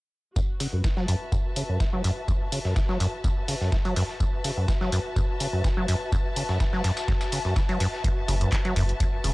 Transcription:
0.36 0.40 F#2 medium
0.36 9.34 F#4 medium
0.36 kick loud
0.36 tambourine medium
0.56 0.67 C#3 medium
0.56 9.34 B4 medium
0.56 snare soft
0.56 open hi-hat medium
0.56 tambourine medium
0.73 0.82 F#2 medium
0.84 0.88 E3 medium
0.84 kick loud
0.84 snare loud
0.84 tambourine medium
0.91 9.34 A5 medium
0.97 1.06 F#3 loud
0.97 9.34 E5 medium
0.97 snare soft
1.08 1.15 F#2 medium
1.08 open hi-hat medium
1.08 tambourine medium
1.32 1.36 F#2 medium
1.32 kick loud
1.32 tambourine medium
1.56 1.63 C#3 medium
1.56 open hi-hat loud
1.56 tambourine medium
1.69 1.78 F#2 medium
1.80 1.84 E3 medium
1.80 kick loud
1.80 snare loud
1.80 tambourine medium
1.93 2.02 F#3 medium
2.04 2.11 F#2 loud
2.04 open hi-hat medium
2.04 tambourine medium
2.28 2.32 F#2 medium
2.28 kick loud
2.28 tambourine medium
2.52 2.59 C#3 medium
2.52 open hi-hat loud
2.52 tambourine medium
2.65 2.74 F#2 medium
2.65 snare medium
2.76 2.80 E3 medium
2.76 kick loud
2.76 snare loud
2.76 tambourine medium
2.89 2.98 F#3 loud
2.89 snare soft
3.00 3.07 F#2 medium
3.00 open hi-hat medium
3.00 tambourine medium
3.24 3.28 F#2 loud
3.24 kick loud
3.24 tambourine medium
3.48 3.55 C#3 medium
3.48 open hi-hat medium
3.48 open hi-hat loud
3.61 3.70 F#2 medium
3.61 snare soft
3.72 3.76 E3 medium
3.72 kick loud
3.72 snare loud
3.72 tambourine medium
3.85 3.94 F#3 loud
3.85 closed hi-hat soft
3.96 4.03 F#2 loud
3.96 snare soft
3.96 open hi-hat medium
3.96 tambourine medium
4.09 snare soft
4.20 4.24 F#2 loud
4.20 kick loud
4.20 tambourine medium
4.44 4.51 C#3 medium
4.44 snare soft
4.44 open hi-hat loud
4.44 tambourine medium
4.57 4.66 F#2 medium
4.68 4.73 E3 medium
4.68 kick loud
4.68 snare loud
4.68 tambourine medium
4.81 4.90 F#3 loud
4.81 snare soft
4.92 4.99 F#2 medium
4.92 open hi-hat medium
4.92 tambourine medium
5.16 5.20 F#2 loud
5.16 kick loud
5.16 tambourine medium
5.40 5.47 C#3 medium
5.40 open hi-hat loud
5.40 tambourine medium
5.53 5.62 F#2 medium
5.64 5.68 E3 medium
5.64 kick loud
5.64 snare loud
5.64 tambourine medium
5.77 5.86 F#3 loud
5.88 5.95 F#2 loud
5.88 open hi-hat medium
5.88 tambourine medium
6.12 6.16 F#2 medium
6.12 kick loud
6.12 tambourine medium
6.36 6.43 C#3 medium
6.36 open hi-hat loud
6.36 tambourine medium
6.49 6.58 F#2 medium
6.49 snare soft
6.60 6.65 E3 medium
6.60 kick loud
6.60 snare loud
6.60 tambourine medium
6.73 6.82 F#3 medium
6.73 snare soft
6.84 6.91 F#2 loud
6.84 snare medium
6.84 open hi-hat medium
6.84 tambourine medium
6.97 snare loud
6.97 tambourine medium
7.08 7.12 F#2 loud
7.08 kick loud
7.08 snare medium
7.08 tambourine medium
7.21 snare loud
7.21 tambourine medium
7.32 7.39 C#3 medium
7.32 open hi-hat medium
7.32 open hi-hat loud
7.45 7.54 F#2 medium
7.45 snare soft
7.56 7.60 E3 medium
7.56 kick loud
7.56 snare loud
7.56 tambourine medium
7.69 7.78 F#3 loud
7.69 closed hi-hat soft
7.80 7.87 F#2 loud
7.80 snare soft
7.80 open hi-hat medium
7.80 tambourine medium
7.93 snare soft
8.04 8.08 F#2 loud
8.04 kick loud
8.04 closed hi-hat medium
8.04 tambourine medium
8.28 8.45 F#1 loud
8.28 8.35 C#3 medium
8.28 snare soft
8.28 open hi-hat loud
8.28 tambourine medium
8.41 8.50 F#2 medium
8.41 closed hi-hat soft
8.52 8.56 E3 medium
8.52 kick loud
8.52 snare loud
8.52 clap loud
8.52 closed hi-hat medium
8.52 tambourine medium
8.65 8.74 F#3 loud
8.65 snare soft
8.65 closed hi-hat soft
8.76 8.93 F#1 medium
8.76 8.83 F#2 loud
8.76 open hi-hat medium
8.76 tambourine medium
8.89 closed hi-hat soft
9.00 9.04 F#2 loud
9.00 kick loud
9.00 closed hi-hat medium
9.00 tambourine medium
9.24 9.34 E1 medium
9.24 9.31 C#3 medium
9.24 open hi-hat medium
9.24 tambourine medium

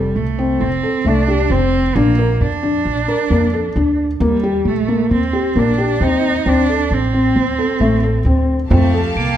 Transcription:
0.00 0.11 F1 medium
0.00 0.17 G3 medium
0.00 0.23 A4 medium
0.15 0.56 C2 medium
0.15 0.62 A3 medium
0.39 0.68 C4 medium
0.60 0.81 F1 medium
0.60 1.08 C4 medium
0.83 0.98 A4 medium
1.05 1.45 C2 medium
1.05 1.21 A3 medium
1.05 1.52 D4 medium
1.28 1.43 G4 medium
1.50 1.90 F1 medium
1.50 1.97 C4 medium
1.50 1.81 C4 medium
1.95 2.36 A#1 medium
1.95 2.42 A#3 medium
1.95 2.11 D4 medium
2.19 2.48 A#4 medium
2.41 2.81 F2 medium
2.41 3.98 D4 medium
2.63 2.92 D4 medium
2.85 3.06 A#1 medium
3.08 3.23 A#4 medium
3.30 3.71 F2 medium
3.30 3.46 A#3 medium
3.54 3.68 A4 medium
3.76 4.16 D2 medium
3.76 4.05 D4 medium
4.20 4.60 D#2 medium
4.20 4.69 G3 medium
4.20 4.36 A#3 medium
4.43 4.73 G4 medium
4.65 5.05 A#1 medium
4.65 5.11 A3 medium
4.88 5.17 A#3 medium
5.11 5.31 D#2 medium
5.11 5.60 C4 medium
5.33 5.48 G4 medium
5.56 5.96 A#1 medium
5.56 5.71 A#3 medium
5.56 6.04 D4 medium
5.78 5.93 G4 medium
6.01 6.41 D#2 medium
6.01 6.30 C4 medium
6.01 6.49 D#4 medium
6.46 6.86 D2 medium
6.46 6.61 C4 medium
6.46 6.94 D4 medium
6.69 6.98 A4 medium
6.91 7.31 A1 medium
6.91 8.49 C4 medium
7.14 7.43 C4 medium
7.36 7.56 D2 medium
7.59 7.73 A4 medium
7.80 8.20 A1 medium
7.80 7.95 A3 medium
8.03 8.18 A4 medium
8.25 8.65 D2 medium
8.25 8.55 C4 medium
8.70 9.11 F2 medium
8.70 9.13 A3 medium
8.70 8.86 C4 medium
8.70 9.37 G4 medium
8.70 9.37 F5 medium
8.70 9.37 A5 medium
8.70 frame drum medium
8.94 9.23 A4 medium
9.16 9.37 C2 medium
9.16 9.37 A#3 medium
9.16 9.37 D7 soft

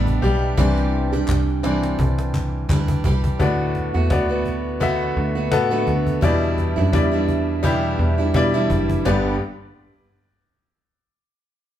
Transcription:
0.00 0.20 A1 medium
0.00 0.21 G3 medium
0.00 0.23 G3 soft
0.00 0.22 B3 medium
0.00 0.60 B3 soft
0.00 0.23 D4 medium
0.00 0.59 D4 medium
0.00 0.59 E4 medium
0.00 0.24 G4 medium
0.00 0.60 D5 loud
0.00 0.60 E5 loud
0.07 cajon bass medium
0.22 0.55 B1 loud
0.22 0.57 G3 medium
0.22 2.66 G3 medium
0.22 0.58 B3 medium
0.22 0.58 D4 medium
0.22 2.65 G4 medium
0.22 0.58 G4 medium
0.22 cajon slap soft
0.57 1.24 C2 loud
0.57 1.13 C3 loud
0.57 1.13 E3 loud
0.57 1.06 E3 medium
0.57 1.13 G3 medium
0.57 1.07 C4 soft
0.57 1.13 D4 medium
0.57 1.07 D4 medium
0.57 1.11 G4 loud
0.57 cajon bass loud
0.57 cajon slap medium
0.77 cajon slap medium
0.93 cajon slap soft
1.12 1.63 G3 medium
1.12 1.64 D4 medium
1.12 1.64 G4 medium
1.12 cajon slap medium
1.28 1.95 C2 medium
1.28 cajon bass loud
1.28 cajon slap medium
1.28 clap medium
1.49 cajon slap soft
1.63 2.68 E3 medium
1.63 1.95 E3 soft
1.63 2.69 G3 medium
1.63 1.95 C4 soft
1.63 1.96 D4 medium
1.63 2.70 D4 medium
1.63 2.70 G4 medium
1.63 cajon slap medium
1.84 cajon slap medium
1.99 2.66 C2 loud
1.99 cajon bass loud
2.19 cajon slap medium
2.34 cajon bass medium
2.34 clap medium
2.69 3.02 D2 loud
2.69 3.03 E3 medium
2.69 3.04 G3 medium
2.69 3.05 D4 medium
2.69 3.06 G4 medium
2.69 cajon bass loud
2.69 clap medium
2.88 cajon bass medium
3.04 3.38 C2 loud
3.04 3.39 E3 medium
3.04 3.40 G3 medium
3.04 3.41 D4 medium
3.04 3.41 G4 medium
3.04 cajon bass loud
3.24 cajon bass medium
3.39 3.91 D2 loud
3.39 4.42 A2 medium
3.39 3.95 D3 medium
3.39 3.95 A3 medium
3.39 3.94 B3 medium
3.39 3.94 F#4 medium
3.39 3.93 F#4 medium
3.39 3.95 D5 medium
3.39 cajon bass loud
3.75 cajon bass medium
3.75 cajon slap soft
3.94 4.09 E2 medium
3.94 4.31 A3 soft
3.94 4.29 B3 medium
3.94 4.28 F#4 medium
4.10 5.13 D2 loud
4.10 4.65 B3 medium
4.10 4.65 F#4 medium
4.10 4.66 D5 medium
4.10 cajon bass loud
4.10 cajon slap medium
4.29 4.79 A3 soft
4.29 4.80 B3 medium
4.29 4.81 F#4 medium
4.45 cajon bass soft
4.45 cajon slap soft
4.80 5.36 D3 medium
4.80 5.36 A3 medium
4.80 5.35 B3 medium
4.80 5.36 B3 medium
4.80 5.36 F#4 medium
4.80 5.34 F#4 medium
4.80 5.36 E5 medium
4.80 cajon bass loud
5.00 cajon slap soft
5.16 5.53 D2 medium
5.16 cajon slap soft
5.35 5.71 A3 soft
5.35 5.70 B3 medium
5.35 5.70 F#4 medium
5.51 5.85 A2 loud
5.51 6.06 B3 medium
5.51 6.06 F#4 medium
5.51 6.06 A4 loud
5.51 cajon bass loud
5.51 cajon slap loud
5.71 6.21 D3 medium
5.71 6.22 A3 medium
5.71 6.23 B3 medium
5.71 6.22 F#4 medium
5.87 6.20 D2 medium
5.87 cajon bass medium
5.87 cajon slap soft
6.07 cajon bass medium
6.21 6.74 E2 loud
6.21 7.25 B2 medium
6.21 6.77 E3 medium
6.21 6.76 G3 medium
6.21 6.77 G3 medium
6.21 6.76 D4 medium
6.21 6.77 E4 medium
6.21 6.75 E4 medium
6.21 6.77 D5 medium
6.21 cajon bass loud
6.58 cajon bass medium
6.58 cajon slap soft
6.76 6.92 F#2 medium
6.76 7.13 E3 medium
6.76 7.12 G3 medium
6.76 7.11 D4 medium
6.76 7.10 E4 medium
6.93 7.95 E2 loud
6.93 7.47 G3 medium
6.93 7.48 E4 medium
6.93 7.48 D5 medium
6.93 cajon bass loud
6.93 cajon slap medium
7.11 7.62 E3 soft
7.11 7.63 G3 medium
7.11 7.63 D4 medium
7.11 7.63 E4 medium
7.28 cajon bass medium
7.28 cajon slap soft
7.63 8.19 E2 medium
7.63 8.19 B2 medium
7.63 8.19 E3 medium
7.63 8.17 G3 medium
7.63 8.19 G3 medium
7.63 8.18 D4 medium
7.63 8.18 E4 medium
7.63 8.17 E4 loud
7.63 8.18 G4 medium
7.63 cajon bass loud
7.83 cajon slap soft
7.99 8.32 E2 medium
7.99 cajon slap soft
8.18 8.54 E3 soft
8.18 8.54 G3 soft
8.18 8.53 D4 medium
8.18 8.53 E4 medium
8.34 8.67 B2 medium
8.34 8.88 G3 medium
8.34 8.89 E4 medium
8.34 8.89 D5 loud
8.34 cajon bass loud
8.34 cajon slap medium
8.54 9.05 E2 medium
8.54 9.05 B2 medium
8.54 9.06 E3 medium
8.54 9.05 G3 medium
8.54 9.05 D4 medium
8.54 9.05 E4 medium
8.70 9.03 F#1 loud
8.70 cajon bass medium
8.90 cajon bass medium
9.05 9.38 G1 loud
9.05 9.34 G2 medium
9.05 9.38 G2 medium
9.05 9.35 D3 medium
9.05 9.35 G3 medium
9.05 9.39 B3 medium
9.05 9.35 B3 medium
9.05 9.35 D4 medium
9.05 9.38 G4 medium
9.05 9.36 G4 medium
9.05 9.39 D5 medium
9.05 cajon bass loud
9.05 cajon slap loud

